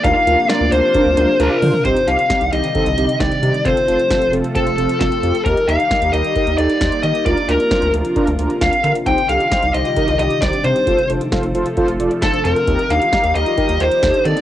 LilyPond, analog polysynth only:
\new Staff \with { instrumentName = "Analog polysynth" } { \time 4/4 \key c \dorian \tempo 4 = 133 <d' f' bes'>16 r16 <d' f' bes'>16 r16 <d' f' bes'>16 r16 <d' f' bes'>16 r16 <d' f' bes'>16 r16 <d' f' bes'>16 r16 <d' f' bes'>16 r16 <d' f' c''>16 r16 | <c' ees' g'>16 r16 <c' ees' g'>16 r16 <c' ees' g'>16 r16 <c' ees' g'>16 r16 <c' ees' a'>16 r16 <c' ees' g'>16 r16 <c' ees' g'>16 r16 <c' ees' g'>16 r16 | <c' f' a'>16 r16 <c' f' a'>16 r16 <c' f' a'>16 r16 <c' f' a'>16 r16 <c' f' a'>16 r16 <c' f' a'>16 r16 <c' f' a'>16 r16 <c' f' g'>16 r16 | <ees' g' bes'>16 r16 <ees' g' bes'>16 r16 <ees' g' bes'>16 r16 <ees' g' bes'>16 r16 <ees' g' bes'>16 r16 <ees' g' a'>16 r16 <ees' g' c''>16 r16 <ees' g' bes'>16 r16 |
<d' f' bes'>16 r16 <d' f' bes'>16 r16 <d' f' c''>16 r16 <d' f' bes'>16 r16 <d' f' bes'>16 r16 <d' f' bes'>16 r16 <d' f' bes'>16 r16 <d' f' bes'>16 r16 | <ees' g' c''>16 r16 <ees' g' a'>16 r16 <ees' g' c''>16 r16 <ees' g' c''>16 r16 <ees' g' bes'>16 r16 <ees' g' d''>16 r16 <ees' g' c''>16 r16 <ees' g' c''>16 r16 | <f' a' c''>16 r16 <f' a' c''>16 r16 <f' a' c''>16 r16 <f' a' c''>16 r16 <f' a' c''>16 r16 <f' a' d''>16 r16 <f' a' c''>16 r16 <f' a' c''>16 r16 | <ees' g' bes'>16 r16 <ees' g' bes'>16 r16 <ees' g' bes'>16 r16 <ees' g' bes'>16 r16 <ees' g' bes'>16 r16 <ees' g' bes'>16 r16 <ees' g' a'>16 r16 <ees' g' a'>16 r16 | }